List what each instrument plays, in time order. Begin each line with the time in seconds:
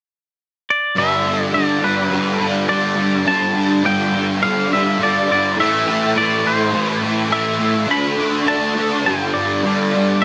0.70 clean electric guitar D5
0.96 distorted electric guitar G2 D3 G3, clean electric guitar E5
1.25 distorted electric guitar D3 G3
1.43 clean electric guitar D5
1.52 distorted electric guitar G2 D3 G3, clean electric guitar D5
1.82 distorted electric guitar D3 G3, clean electric guitar B4
2.10 distorted electric guitar G2 D3 G3
2.38 distorted electric guitar D3 G3
2.68 distorted electric guitar G2 D3 G3, clean electric guitar D5
2.95 distorted electric guitar D3 G3
3.26 distorted electric guitar G2 D3 G3, clean electric guitar A5
3.54 distorted electric guitar D3 G3
3.84 distorted electric guitar G2 D3 G3, clean electric guitar G5
4.12 distorted electric guitar D3 G3
4.42 distorted electric guitar G2 D3 G3, clean electric guitar F5
4.71 distorted electric guitar D3 G3, clean electric guitar E5
4.98 distorted electric guitar G2 D3 G3
5.03 clean electric guitar D5
5.27 distorted electric guitar D3 G3
5.32 clean electric guitar D5
5.57 distorted electric guitar A2 E3 A3, clean electric guitar E5
5.86 distorted electric guitar E3 A3
6.15 distorted electric guitar A2 E3 A3, clean electric guitar D5
6.45 distorted electric guitar E3 A3, clean electric guitar C5
6.73 distorted electric guitar A2 E3 A3
6.85 clean electric guitar B4
7.01 distorted electric guitar E3 A3
7.29 distorted electric guitar A2 E3 A3, clean electric guitar E5
7.59 distorted electric guitar E3 A3
7.87 distorted electric guitar D3 A3 D4, clean electric guitar B5
8.17 distorted electric guitar A3 D4
8.46 distorted electric guitar D3 A3 D4, clean electric guitar A5
8.76 distorted electric guitar A3 D4
9.04 distorted electric guitar G2 D3 G3, clean electric guitar G5
9.34 distorted electric guitar D3 G3, clean electric guitar D5
9.63 distorted electric guitar G2 D3 G3
9.94 distorted electric guitar D3 G3